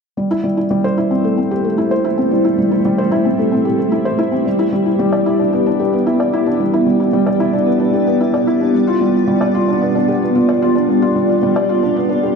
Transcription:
0.17 0.30 G3 medium
0.17 4.46 A3 medium
0.31 0.43 E4 medium
0.31 8.75 E4 medium
0.44 0.57 G3 medium
0.44 4.46 C5 medium
0.57 0.65 E4 medium
0.71 0.83 G3 medium
0.84 0.97 C5 medium
0.98 1.10 E4 medium
1.11 1.24 C4 medium
1.19 12.36 G4 medium
1.24 1.37 A3 medium
1.38 1.51 C4 medium
1.51 1.64 G4 medium
1.65 1.77 A3 medium
1.78 1.91 E4 medium
1.91 2.04 C5 medium
2.04 2.17 E4 medium
2.18 2.31 C4 medium
2.31 2.44 G3 medium
2.45 2.58 E4 medium
2.58 2.71 G3 medium
2.71 2.79 E4 medium
2.85 2.98 G3 medium
2.98 3.11 C5 medium
3.12 3.25 E4 medium
3.25 3.38 C4 medium
3.39 3.52 A3 medium
3.52 3.65 C4 medium
3.65 3.78 G4 medium
3.78 3.91 A3 medium
3.92 4.05 E4 medium
4.05 4.18 C5 medium
4.19 4.32 E4 medium
4.32 4.45 C4 medium
4.45 4.58 G3 medium
4.45 12.36 B3 medium
4.59 4.72 E4 medium
4.72 4.85 G3 medium
4.86 4.94 E4 medium
4.99 5.12 G3 medium
5.13 5.25 D5 medium
5.26 5.39 E4 medium
5.39 5.52 D4 medium
5.49 12.36 D5 medium
5.53 5.66 B3 medium
5.66 5.79 D4 medium
5.80 5.92 G4 medium
5.93 6.06 B3 medium
6.07 6.19 E4 medium
6.20 6.33 D5 medium
6.33 6.46 E4 medium
6.47 6.59 D4 medium
6.60 6.73 G3 medium
6.74 6.86 E4 medium
6.87 6.99 G3 medium
7.00 7.08 E4 medium
7.13 7.26 G3 medium
7.26 7.40 D5 medium
7.40 7.53 E4 medium
7.53 7.66 D4 medium
7.66 7.80 B3 medium
7.80 7.93 D4 medium
7.93 8.06 G4 medium
8.07 8.20 B3 medium
8.21 8.33 E4 medium
8.34 8.47 D5 medium
8.47 8.60 E4 medium
8.61 8.74 D4 medium
8.74 8.87 G3 medium
8.83 12.36 F4 medium
8.87 9.00 F4 medium
9.01 9.14 G3 medium
9.14 9.22 F4 medium
9.28 9.41 G3 medium
9.41 9.54 D5 medium
9.55 9.68 F4 medium
9.68 9.81 D4 medium
9.82 9.94 B3 medium
9.95 10.08 D4 medium
10.08 10.21 G4 medium
10.22 10.35 B3 medium
10.35 10.48 F4 medium
10.49 10.61 D5 medium
10.62 10.75 F4 medium
10.75 10.88 D4 medium
10.89 11.02 G3 medium
11.02 11.15 F4 medium
11.16 11.28 G3 medium
11.29 11.37 F4 medium
11.43 11.55 G3 medium
11.56 11.69 D5 medium
11.69 11.82 F4 medium
11.83 11.95 D4 medium
11.96 12.09 B3 medium
12.09 12.22 D4 medium
12.23 12.36 G4 medium

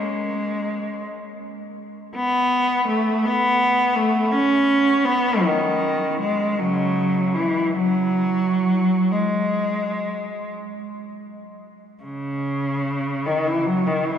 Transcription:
0.00 1.06 G#3 soft
2.16 2.84 B3 medium
2.88 3.25 A3 medium
3.25 3.97 B3 medium
3.95 4.32 A3 medium
4.32 5.05 C#4 medium
5.05 5.43 B3 medium
5.42 6.21 D#3 medium
6.20 6.58 G#3 medium
6.58 7.31 C#3 soft
6.58 7.35 F#3 medium
7.35 7.75 E3 medium
7.77 9.09 F#3 medium
9.11 10.49 G#3 medium
12.03 13.23 C#3 medium
13.26 13.47 D#3 medium
13.47 13.67 E3 medium
13.65 13.86 F#3 medium
13.86 14.06 D#3 soft
14.06 14.18 E3 medium

